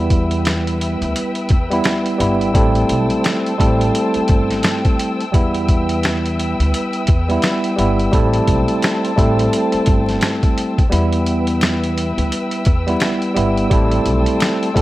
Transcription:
Already playing: upright bass E2, tine electric piano G3 B3 E4, string section B4 E5 G5 E6
0.10 kick, closed hi-hat
0.31 closed hi-hat
0.45 snare, closed hi-hat
0.67 closed hi-hat
0.81 closed hi-hat
1.01 upright bass D2, closed hi-hat
1.16 closed hi-hat
1.35 closed hi-hat
1.49 upright bass E2, kick, closed hi-hat
1.70 tine electric piano G3 B3 E4, closed hi-hat
1.84 snare, closed hi-hat
2.06 closed hi-hat
2.18 upright bass G1, tine electric piano G3 B3 E4, closed hi-hat
2.41 closed hi-hat
2.54 upright bass A1, tine electric piano G3 A3 C4 E4 A4, string section C5 A5, kick, closed hi-hat
2.75 closed hi-hat
2.89 upright bass B1, closed hi-hat
3.10 closed hi-hat
3.24 snare, closed hi-hat
3.46 closed hi-hat
3.58 upright bass A1, tine electric piano G3 A3 C4 E4 A4, kick, closed hi-hat
3.81 closed hi-hat
3.95 closed hi-hat
4.14 muted upright bass stroke, closed hi-hat
4.28 upright bass G1, kick, closed hi-hat
4.51 snare, closed hi-hat
4.63 snare, closed hi-hat
4.85 kick, closed hi-hat
4.99 closed hi-hat
5.20 closed hi-hat
5.32 upright bass E2, tine electric piano G3 B3 E4, string section B4 E5, kick, closed hi-hat
5.54 closed hi-hat
5.68 kick, closed hi-hat
5.89 closed hi-hat
6.03 snare, closed hi-hat
6.26 closed hi-hat
6.40 closed hi-hat
6.60 upright bass D2, closed hi-hat
6.74 closed hi-hat
6.93 closed hi-hat
7.07 upright bass E2, kick, closed hi-hat
7.28 tine electric piano G3 B3 E4, closed hi-hat
7.42 snare, closed hi-hat
7.64 closed hi-hat
7.76 upright bass G1, tine electric piano G3 B3 E4, closed hi-hat
8.00 closed hi-hat
8.12 upright bass A1, tine electric piano G3 A3 C4 E4 A4, string section C5 A5, kick, closed hi-hat
8.34 closed hi-hat
8.48 upright bass B1, kick, closed hi-hat
8.68 closed hi-hat
8.82 snare, closed hi-hat
9.05 closed hi-hat
9.16 upright bass A1, tine electric piano G3 A3 C4 E4 A4, kick, closed hi-hat
9.39 closed hi-hat
9.53 closed hi-hat
9.72 muted upright bass stroke, closed hi-hat
9.86 upright bass G1, kick, closed hi-hat
10.09 snare, closed hi-hat
10.21 snare, closed hi-hat
10.43 kick, closed hi-hat
10.58 closed hi-hat
10.78 kick, closed hi-hat
10.90 upright bass E2, tine electric piano G3 B3 E4, string section B4 E5 G5 E6, closed hi-hat
11.12 closed hi-hat
11.26 closed hi-hat
11.47 closed hi-hat
11.61 finger snap, snare, closed hi-hat
11.84 closed hi-hat
11.98 closed hi-hat
12.18 upright bass D2, closed hi-hat
12.32 closed hi-hat
12.51 closed hi-hat
12.65 upright bass E2, kick, closed hi-hat
12.87 tine electric piano G3 B3 E4, closed hi-hat
13.00 finger snap, snare, closed hi-hat
13.22 closed hi-hat
13.34 upright bass G1, tine electric piano G3 B3 E4, closed hi-hat
13.57 closed hi-hat
13.70 upright bass A1, tine electric piano G3 A3 C4 E4 A4, string section C5 A5, kick, closed hi-hat
13.91 closed hi-hat
14.06 upright bass B1, closed hi-hat
14.26 closed hi-hat
14.40 finger snap, snare, closed hi-hat
14.63 closed hi-hat
14.74 upright bass A1, tine electric piano G3 A3 C4 E4 A4, kick, closed hi-hat

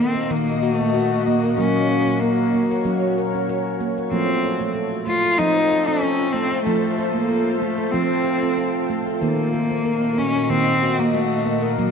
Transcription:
Already playing: ambient pad A#2 F#4 D#5
0.00 handpan A#3, cello C4
0.15 handpan A#4
0.30 handpan D#3 A#3, cello A#3
0.63 cello A3, handpan F#4
0.80 handpan A#3
0.94 handpan F#4
1.26 cello A#3, handpan A#3
1.44 handpan A#4
1.58 handpan F#3 A#3, cello C#4, ambient pad C#5
1.91 handpan A#4
2.07 handpan A#3
2.20 cello A#3, handpan A#4
2.54 handpan A#3
2.71 handpan A#4
2.85 handpan F#3 C#4
3.18 handpan A#4
3.35 handpan C#4
3.49 handpan A#4
3.80 handpan A#3
3.98 handpan A#4
4.11 handpan F3 A3, cello C4, ambient pad F4 A4 C5
4.44 handpan A4
4.61 handpan A3
4.75 handpan A4
5.07 handpan A3, cello F4
5.25 handpan A4
5.38 handpan F3 C4, cello D#4
5.72 handpan A4
5.87 handpan C4, cello C#4
6.02 handpan A4
6.32 handpan A3, cello C4
6.52 handpan A4
6.64 handpan F3 A3, cello A3
6.98 handpan A4
7.13 handpan A3, cello A#3
7.30 handpan A4
7.60 cello A3, handpan A3
7.78 handpan A4
7.92 handpan F3 C4, cello C4
8.25 handpan A4
8.43 handpan C4
8.58 handpan A4
8.90 handpan A3
9.07 handpan A4
9.22 ambient pad A#2 F#4 D#5, handpan D#3 A#3, cello A#3
9.54 handpan A#4
9.71 handpan A#3
9.85 handpan A#4
10.18 handpan A#3, cello C#4
10.36 handpan A#4
10.43 cello C#4
10.50 handpan D#3 A#3, cello C4
10.82 handpan F#4
10.99 handpan A#3, cello A#3
11.14 cello A3, handpan F#4
11.46 handpan A#3
11.62 handpan A#4
11.78 handpan F#3 A#3, cello A#3

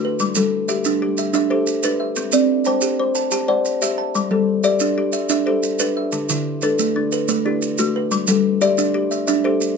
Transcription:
Already playing: kalimba A3 F#4
0.05 kalimba B4
0.19 kalimba G3, maracas
0.35 kalimba G3 A4, maracas
0.68 kalimba G4 E5, maracas
0.84 kalimba D4, maracas
1.02 kalimba G4
1.17 kalimba E5, maracas
1.33 kalimba D4 E5, maracas
1.50 kalimba G4 A4 C5
1.67 maracas
1.83 kalimba D4 B4, maracas
2.00 kalimba E5
2.16 kalimba C4, maracas
2.32 kalimba C4 D5, maracas
2.65 kalimba C5 G5 A5, maracas
2.81 kalimba G4, maracas
2.99 kalimba C5
3.15 kalimba A5, maracas
3.31 kalimba G4 A5, maracas
3.48 kalimba C5 D5 F#5
3.65 maracas
3.82 kalimba G4 E5, maracas
3.98 kalimba A5
4.15 kalimba G3, maracas
4.31 kalimba G3 A4
4.64 kalimba G4 D5 E5, maracas
4.80 kalimba D4, maracas
4.98 kalimba G4
5.12 kalimba E5, maracas
5.29 kalimba D4 E5, maracas
5.46 kalimba G4 A4 C5
5.63 maracas
5.79 kalimba D4 B4, maracas
5.97 kalimba E5
6.12 kalimba D3, maracas
6.29 kalimba D3 E4, maracas
6.62 kalimba D4 A4 B4, maracas
6.79 kalimba A3, maracas
6.96 kalimba D4
7.12 kalimba B4, maracas
7.28 kalimba A3 B4, maracas
7.46 kalimba D4 E4 G4
7.62 maracas
7.78 kalimba A3 F#4, maracas
7.96 kalimba B4
8.11 kalimba G3, maracas
8.27 kalimba G3 A4, maracas
8.61 kalimba G4 D5 E5, maracas
8.78 kalimba D4, maracas
8.94 kalimba G4
9.11 kalimba E5, maracas
9.27 kalimba D4 E5, maracas
9.44 kalimba G4 A4 C5
9.61 maracas

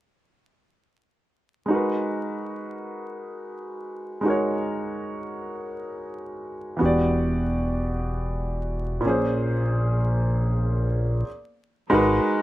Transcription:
1.66 grand piano G#3 D#4
1.71 grand piano F#4 A#4
1.75 grand piano B4
4.21 grand piano G#3 D#4
4.26 grand piano F#4 A#4
4.30 grand piano C#5
6.77 grand piano E3 B3
6.81 analog synth bass E1, grand piano F#4 G4
6.86 grand piano D5
9.01 grand piano A#2 A#3
9.05 analog synth bass A#1, grand piano C#4 G#4
9.09 grand piano C5
11.90 analog synth bass G#1, grand piano G#3 D#4 F#4 A#4
11.94 grand piano B4

